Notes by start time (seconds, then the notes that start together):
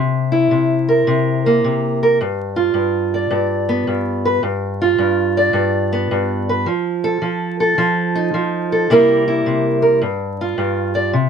Already playing: C3
0.32 E4
0.51 C3
0.89 A#4
1.07 C3
1.46 A#3
1.64 C3
2.03 A#4
2.21 G2
2.56 F4
2.74 G2
3.14 D5
3.31 G2
3.69 B3
3.87 G2
4.25 B4
4.43 G2
4.82 F4
4.98 G2
5.37 D5
5.53 G2
5.93 B3
6.11 G2
6.49 B4
6.66 F3
7.04 A4
7.22 F3
7.60 A4
7.78 F3
8.15 D#4
8.34 F3
8.72 A4
8.90 C3 G3 A#3 E4 A#4
9.28 E4
9.46 C3
9.82 A#4
10.02 G2
10.41 F4
10.58 G2
10.95 D5
11.13 C3